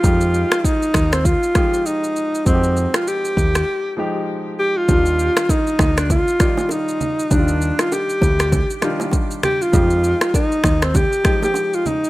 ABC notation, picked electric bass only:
X:1
M:4/4
L:1/16
Q:"Swing 16ths" 1/4=99
K:Fdor
V:1 name="Picked electric bass" clef=bass
F,,3 z3 E,,3 z6 z | F,,3 z3 E,,2 z8 | E,,3 z3 D,,3 z6 z | E,,3 z3 D,,3 z6 z |
F,,3 z3 E,,3 z6 z |]